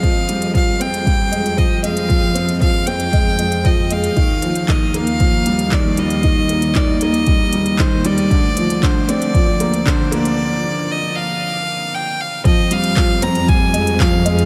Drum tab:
HH |x-xxx-xxx-xxx-xx|x-xxx-xxx-xxx-xx|x-xxx-xxx-xxx-xx|x-xxx-xxx-xxx-xx|
CP |----------------|----------------|----x-------x---|----x-------x---|
BD |o---o---o---o---|o---o---o---o---|o---o---o---o---|o---o---o---o---|

HH |x-xxx-xxx-xxx-xx|----------------|x-xxx-xxx-xxx-xx|
CP |----x-------x---|----------------|----x-------x---|
BD |o---o---o---o---|----------------|o---o---o---o---|